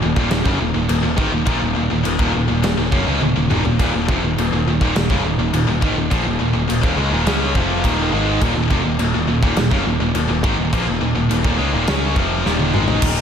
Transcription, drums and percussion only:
0.16 kick loud
0.31 snare loud
0.31 china medium
0.46 kick loud
0.89 china medium
1.18 kick loud
1.46 kick loud
1.46 china medium
2.05 china medium
2.19 kick loud
2.63 snare loud
2.63 china medium
2.92 kick loud
3.21 high tom medium
3.51 mid tom medium
3.65 floor tom medium
3.79 kick loud
3.79 china medium
4.09 kick loud
4.38 china medium
4.81 kick loud
4.96 snare loud
4.96 china medium
5.10 kick loud
5.54 china medium
5.82 kick loud
6.11 kick loud
6.11 china medium
6.70 china medium
6.83 kick loud
7.27 snare loud
7.27 china medium
7.55 kick loud
7.84 kick loud
7.84 china medium
8.41 kick loud
8.41 china medium
8.71 kick loud
8.99 china medium
9.43 kick loud
9.57 snare loud
9.57 china medium
9.71 kick loud
10.15 china medium
10.44 kick loud
10.73 kick loud
10.73 china medium
11.31 china medium
11.45 kick loud
11.87 snare loud
11.87 china medium
12.16 kick loud
12.46 snare medium
12.59 high tom medium
12.74 mid tom medium
12.88 floor tom medium
13.02 kick loud
13.02 crash loud
13.02 crash medium

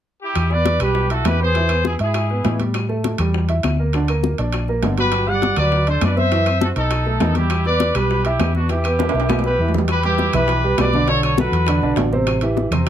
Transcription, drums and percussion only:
0.35 high bongo medium
0.35 high conga soft
0.35 high timbale medium
0.35 claves medium
0.50 high bongo soft
0.50 high conga soft
0.65 high bongo medium
0.65 high conga medium
0.65 high timbale medium
0.80 high bongo soft
0.80 high conga soft
0.80 high timbale medium
0.80 claves medium
0.95 high bongo medium
0.95 high conga soft
1.10 high bongo soft
1.10 high conga soft
1.10 high timbale medium
1.25 high bongo medium
1.25 low bongo medium
1.25 high conga medium
1.25 high timbale medium
1.25 low timbale medium
1.25 claves medium
1.55 high bongo medium
1.55 high conga soft
1.55 high timbale medium
1.69 high conga soft
1.69 high timbale medium
1.69 claves medium
1.85 high bongo medium
1.85 high conga loud
1.99 high bongo soft
1.99 high conga soft
1.99 high timbale medium
2.14 high bongo medium
2.14 high conga soft
2.14 high timbale medium
2.14 claves medium
2.30 high bongo soft
2.30 high conga soft
2.44 high bongo medium
2.44 low bongo medium
2.44 high conga medium
2.44 high timbale medium
2.44 low timbale medium
2.60 high bongo soft
2.60 high conga medium
2.60 high timbale medium
2.74 high bongo medium
2.74 high conga soft
2.74 high timbale medium
2.74 claves medium
2.89 high bongo soft
2.89 high conga soft
3.04 high bongo medium
3.04 high conga medium
3.04 high timbale medium
3.18 high bongo soft
3.18 high conga soft
3.18 high timbale medium
3.18 claves medium
3.34 high bongo medium
3.34 high conga soft
3.49 high bongo soft
3.49 high conga soft
3.49 high timbale medium
3.63 high bongo medium
3.63 low bongo medium
3.63 high conga medium
3.63 high timbale medium
3.63 claves medium
3.93 high bongo medium
3.93 high conga soft
3.93 high timbale medium
4.08 high conga soft
4.08 high timbale medium
4.08 claves medium
4.23 high bongo medium
4.23 high conga medium
4.38 high bongo soft
4.38 high conga soft
4.38 high timbale medium
4.53 high bongo medium
4.53 high conga soft
4.53 high timbale medium
4.53 claves medium
4.68 high bongo soft
4.68 high conga soft
4.83 high bongo medium
4.83 low bongo medium
4.83 high conga medium
4.83 high timbale medium
4.83 low timbale medium
4.98 high bongo soft
4.98 high conga medium
4.98 high timbale medium
5.12 high bongo medium
5.12 high conga soft
5.12 high timbale medium
5.12 claves medium
5.27 high bongo soft
5.27 high conga soft
5.42 high bongo medium
5.42 high conga medium
5.42 high timbale medium
5.56 high bongo soft
5.56 high conga soft
5.56 high timbale medium
5.56 claves medium
5.72 high bongo medium
5.72 high conga soft
5.87 high bongo soft
5.87 high conga soft
5.87 high timbale medium
6.01 high bongo medium
6.01 low bongo medium
6.01 high conga medium
6.01 high timbale loud
6.01 low timbale medium
6.01 claves medium
6.17 high conga medium
6.32 high bongo medium
6.32 high conga soft
6.32 high timbale medium
6.46 high conga soft
6.46 high timbale medium
6.46 claves medium
6.61 high bongo medium
6.61 high conga medium
6.76 high bongo soft
6.76 high conga soft
6.76 high timbale medium
6.91 high bongo medium
6.91 high conga soft
6.91 high timbale medium
6.91 claves medium
7.06 high bongo soft
7.06 high conga soft
7.20 high bongo medium
7.20 low bongo medium
7.20 high conga medium
7.20 high timbale medium
7.20 low timbale medium
7.35 high bongo soft
7.35 high conga medium
7.35 high timbale medium
7.50 high bongo medium
7.50 high timbale medium
7.50 claves medium
7.65 high bongo soft
7.65 high conga soft
7.80 high bongo medium
7.80 high conga medium
7.80 high timbale medium
7.95 high bongo soft
7.95 high conga soft
7.95 high timbale medium
7.95 claves medium
8.10 high bongo medium
8.10 high conga soft
8.25 high bongo soft
8.25 high conga soft
8.25 high timbale medium
8.40 high bongo medium
8.40 low bongo medium
8.40 high conga medium
8.40 high timbale medium
8.40 low timbale medium
8.40 claves medium
8.55 high conga medium
8.69 high bongo medium
8.69 high conga soft
8.69 high timbale medium
8.84 high conga soft
8.84 high timbale medium
8.84 claves medium
8.99 high bongo medium
8.99 high conga loud
8.99 high timbale medium
9.09 high timbale medium
9.15 high bongo soft
9.15 high conga soft
9.20 high timbale medium
9.29 high bongo medium
9.29 high conga loud
9.29 low timbale loud
9.29 claves medium
9.39 low timbale medium
9.44 high bongo medium
9.68 low timbale medium
9.74 low bongo medium
9.74 low conga medium
9.78 low timbale medium
9.88 high bongo medium
9.88 high conga soft
9.88 high timbale medium
9.88 claves medium
10.03 high conga soft
10.03 high timbale medium
10.18 high bongo medium
10.18 high conga medium
10.18 low timbale medium
10.33 high conga soft
10.33 low conga medium
10.33 high timbale medium
10.33 claves medium
10.48 high bongo medium
10.48 high conga soft
10.48 high timbale medium
10.64 high conga soft
10.78 high bongo medium
10.78 low bongo medium
10.78 high conga medium
10.78 high timbale medium
10.78 low timbale medium
10.78 claves medium
10.93 high conga medium
11.08 high bongo medium
11.08 high conga soft
11.08 high timbale medium
11.23 high bongo soft
11.23 high conga soft
11.23 high timbale medium
11.23 claves medium
11.38 high bongo medium
11.38 high conga loud
11.38 low timbale medium
11.52 high bongo soft
11.52 high conga soft
11.52 high timbale medium
11.67 high bongo medium
11.67 high conga soft
11.67 high timbale loud
11.67 claves medium
11.82 high bongo soft
11.82 high conga soft
11.96 high bongo medium
11.96 low bongo medium
11.96 high conga medium
11.96 high timbale medium
11.96 low timbale medium
12.13 high conga medium
12.27 high bongo medium
12.27 high timbale medium
12.27 claves medium
12.41 high conga soft
12.41 high timbale medium
12.57 high bongo medium
12.57 high conga medium
12.57 low timbale medium
12.72 high conga soft
12.72 low conga medium
12.72 high timbale medium
12.72 claves medium

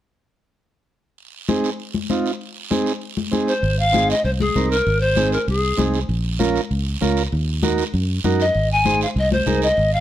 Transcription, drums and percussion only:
1.18 long guiro medium
1.48 high conga medium
1.48 short guiro medium
1.64 short guiro medium
1.80 long guiro medium
1.94 high conga medium
2.10 high conga medium
2.10 short guiro medium
2.26 short guiro medium
2.41 long guiro medium
2.71 high conga medium
2.71 short guiro medium
2.86 short guiro medium
3.01 long guiro medium
3.17 high conga medium
3.33 high conga medium
3.33 short guiro medium
3.48 short guiro medium
3.64 long guiro medium
3.94 high conga medium
3.94 short guiro medium
4.10 short guiro medium
4.25 long guiro medium
4.40 high conga medium
4.56 high conga medium
4.56 short guiro medium
4.72 short guiro medium
4.87 long guiro medium
5.17 high conga medium
5.17 short guiro medium
5.32 short guiro medium
5.48 long guiro medium
5.78 high conga medium
5.78 short guiro medium
5.94 short guiro medium
6.09 long guiro medium
6.40 high conga medium
6.40 short guiro medium
6.55 short guiro medium
6.71 long guiro medium
7.02 high conga medium
7.02 short guiro medium
7.17 short guiro medium
7.32 long guiro medium
7.63 high conga medium
7.63 short guiro medium
7.78 short guiro medium
7.94 long guiro medium
8.24 high conga medium
8.24 short guiro medium
8.40 short guiro medium
8.55 long guiro medium
8.85 high conga medium
8.85 short guiro medium
9.01 short guiro medium
9.17 long guiro medium
9.32 high conga medium
9.46 high conga medium
9.46 short guiro medium
9.62 short guiro medium
9.77 long guiro medium

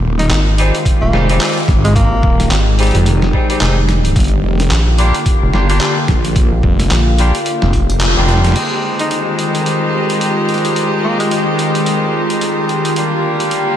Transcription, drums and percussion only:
0.19 snare soft
0.19 closed hi-hat medium
0.31 clap loud
0.31 closed hi-hat medium
0.58 closed hi-hat medium
0.75 closed hi-hat medium
0.85 kick loud
0.85 closed hi-hat medium
1.13 snare soft
1.29 closed hi-hat soft
1.41 clap loud
1.41 closed hi-hat medium
1.45 closed hi-hat soft
1.49 closed hi-hat soft
1.53 closed hi-hat soft
1.58 closed hi-hat soft
1.60 closed hi-hat soft
1.63 closed hi-hat soft
1.66 kick loud
1.66 snare soft
1.66 closed hi-hat soft
1.69 closed hi-hat soft
1.85 closed hi-hat soft
1.96 kick loud
1.96 closed hi-hat medium
2.23 kick loud
2.40 snare soft
2.40 closed hi-hat soft
2.51 clap loud
2.51 closed hi-hat medium
2.79 closed hi-hat medium
2.83 closed hi-hat soft
2.87 closed hi-hat soft
2.91 closed hi-hat soft
2.95 closed hi-hat medium
3.06 closed hi-hat medium
3.22 snare soft
3.33 kick medium
3.50 closed hi-hat soft
3.61 clap loud
3.61 closed hi-hat medium
3.89 snare soft
3.89 closed hi-hat soft
4.05 closed hi-hat medium
4.16 kick loud
4.16 closed hi-hat medium
4.20 closed hi-hat soft
4.24 closed hi-hat soft
4.28 closed hi-hat soft
4.60 snare soft
4.60 closed hi-hat soft
4.71 clap loud
4.71 closed hi-hat medium
4.98 closed hi-hat medium
5.15 closed hi-hat medium
5.26 kick loud
5.26 closed hi-hat medium
5.54 snare soft
5.70 closed hi-hat medium
5.81 clap loud
5.81 closed hi-hat medium
6.08 kick loud
6.08 snare soft
6.08 closed hi-hat soft
6.25 closed hi-hat medium
6.36 kick loud
6.36 closed hi-hat medium
6.63 kick loud
6.80 snare soft
6.80 closed hi-hat medium
6.91 clap loud
6.91 closed hi-hat medium
7.18 closed hi-hat medium
7.35 closed hi-hat medium
7.46 closed hi-hat medium
7.62 snare soft
7.73 kick medium
7.73 closed hi-hat soft
7.90 closed hi-hat medium
8.01 clap loud
8.01 closed hi-hat medium
8.29 snare soft
8.29 closed hi-hat soft
8.34 snare soft
8.38 snare soft
8.45 snare soft
8.45 closed hi-hat medium
8.47 snare soft
8.52 snare soft
8.52 closed hi-hat medium
8.52 crash medium
8.99 closed hi-hat soft
9.11 closed hi-hat medium
9.39 closed hi-hat medium
9.55 closed hi-hat medium
9.66 closed hi-hat medium
10.10 closed hi-hat medium
10.21 closed hi-hat medium
10.49 closed hi-hat soft
10.54 closed hi-hat soft
10.58 closed hi-hat soft
10.65 closed hi-hat medium
10.76 closed hi-hat medium
11.20 closed hi-hat medium
11.31 closed hi-hat medium
11.59 closed hi-hat medium
11.75 closed hi-hat medium
11.86 closed hi-hat medium
12.30 closed hi-hat medium
12.41 closed hi-hat medium
12.69 closed hi-hat soft
12.85 closed hi-hat medium
12.96 closed hi-hat medium
13.40 closed hi-hat soft
13.51 closed hi-hat medium

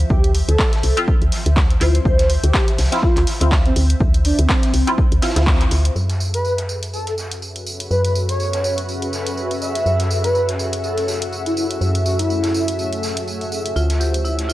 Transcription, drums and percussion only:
0.10 kick loud
0.10 shaker medium
0.24 closed hi-hat medium
0.35 open hi-hat medium
0.49 closed hi-hat medium
0.58 kick loud
0.58 snare loud
0.58 clap loud
0.58 shaker medium
0.73 snare medium
0.73 closed hi-hat soft
0.83 open hi-hat medium
0.97 closed hi-hat medium
1.08 kick loud
1.08 shaker medium
1.22 closed hi-hat soft
1.32 snare soft
1.32 open hi-hat medium
1.46 closed hi-hat medium
1.56 kick loud
1.56 snare loud
1.56 clap loud
1.56 shaker medium
1.70 closed hi-hat soft
1.81 open hi-hat medium
1.95 closed hi-hat medium
2.05 kick loud
2.05 shaker medium
2.19 snare soft
2.19 closed hi-hat medium
2.30 open hi-hat loud
2.44 closed hi-hat medium
2.54 kick loud
2.54 snare loud
2.54 clap loud
2.54 shaker medium
2.68 snare soft
2.68 closed hi-hat medium
2.78 snare medium
2.78 open hi-hat medium
2.78 shaker medium
2.84 snare medium
2.91 snare medium
2.91 closed hi-hat medium
2.91 shaker medium
2.97 snare medium
2.97 shaker medium
3.03 kick loud
3.03 shaker medium
3.16 clap soft
3.16 closed hi-hat soft
3.27 snare soft
3.27 open hi-hat loud
3.41 closed hi-hat medium
3.51 kick loud
3.51 snare loud
3.51 clap loud
3.51 shaker medium
3.66 closed hi-hat soft
3.76 open hi-hat medium
3.90 closed hi-hat medium
4.00 kick loud
4.00 shaker medium
4.14 closed hi-hat medium
4.25 open hi-hat loud
4.39 closed hi-hat medium
4.49 kick loud
4.49 snare loud
4.49 clap loud
4.63 snare soft
4.63 closed hi-hat medium
4.74 open hi-hat medium
4.87 closed hi-hat medium
4.98 kick loud
4.98 shaker medium
5.12 closed hi-hat soft
5.22 snare medium
5.22 open hi-hat loud
5.22 shaker medium
5.29 snare medium
5.29 shaker medium
5.36 snare medium
5.36 closed hi-hat medium
5.36 shaker medium
5.41 snare medium
5.41 shaker medium
5.47 kick loud
5.47 snare loud
5.47 clap loud
5.61 clap soft
5.61 closed hi-hat soft
5.71 open hi-hat medium
5.85 closed hi-hat medium
5.96 tambourine soft
6.09 snare soft
6.09 closed hi-hat soft
6.09 tambourine soft
6.20 tambourine medium
6.34 closed hi-hat medium
6.34 tambourine soft
6.44 tambourine soft
6.44 shaker medium
6.58 snare soft
6.58 closed hi-hat soft
6.69 tambourine medium
6.83 closed hi-hat medium
6.83 closed hi-hat soft
6.83 tambourine soft
6.93 tambourine soft
6.93 shaker medium
7.07 closed hi-hat soft
7.07 tambourine soft
7.18 snare soft
7.18 tambourine medium
7.31 closed hi-hat medium
7.31 tambourine soft
7.41 tambourine soft
7.41 shaker medium
7.56 closed hi-hat soft
7.56 tambourine soft
7.66 tambourine medium
7.66 shaker medium
7.80 closed hi-hat medium
7.80 tambourine soft
7.90 tambourine soft
7.90 shaker medium
8.05 closed hi-hat soft
8.05 tambourine soft
8.15 tambourine medium
8.15 shaker medium
8.29 closed hi-hat medium
8.29 tambourine soft
8.40 tambourine soft
8.40 shaker medium
8.53 snare medium
8.53 closed hi-hat soft
8.53 tambourine soft
8.64 tambourine medium
8.78 closed hi-hat medium
8.78 tambourine soft
8.89 tambourine soft
8.89 shaker medium
9.02 closed hi-hat soft
9.02 tambourine soft
9.13 snare soft
9.13 tambourine medium
9.27 closed hi-hat medium
9.27 tambourine soft
9.37 tambourine soft
9.51 closed hi-hat soft
9.51 tambourine soft
9.62 tambourine medium
9.75 closed hi-hat medium
9.75 tambourine soft
9.86 tambourine soft
10.00 snare soft
10.00 closed hi-hat soft
10.00 tambourine soft
10.11 tambourine medium
10.24 closed hi-hat medium
10.24 tambourine soft
10.35 tambourine soft
10.35 shaker medium
10.49 snare soft
10.49 closed hi-hat soft
10.59 tambourine medium
10.72 closed hi-hat soft
10.72 closed hi-hat medium
10.72 tambourine soft
10.83 tambourine soft
10.83 shaker medium
10.97 closed hi-hat soft
10.97 tambourine soft
11.07 snare soft
11.07 tambourine medium
11.22 closed hi-hat medium
11.22 tambourine soft
11.32 tambourine soft
11.32 shaker medium
11.46 closed hi-hat soft
11.46 tambourine soft
11.57 tambourine medium
11.57 shaker medium
11.71 closed hi-hat medium
11.71 tambourine soft
11.81 tambourine soft
11.81 shaker medium
11.95 closed hi-hat soft
11.95 tambourine soft
12.06 tambourine medium
12.19 closed hi-hat medium
12.19 tambourine soft
12.29 tambourine soft
12.29 shaker medium
12.43 snare soft
12.43 closed hi-hat soft
12.43 tambourine soft
12.54 tambourine medium
12.68 closed hi-hat medium
12.68 tambourine soft
12.78 tambourine soft
12.78 shaker medium
12.93 closed hi-hat soft
12.93 tambourine soft
13.03 snare soft
13.03 tambourine medium
13.17 closed hi-hat medium
13.17 tambourine soft
13.28 tambourine soft
13.28 shaker medium
13.41 closed hi-hat soft
13.41 tambourine soft
13.52 tambourine medium
13.66 closed hi-hat medium
13.66 tambourine soft
13.76 tambourine soft
13.90 snare soft
13.90 closed hi-hat soft
13.90 tambourine soft
14.01 tambourine medium
14.14 closed hi-hat medium
14.14 tambourine soft
14.25 tambourine soft
14.25 shaker medium
14.39 snare soft
14.39 closed hi-hat soft
14.49 tambourine medium

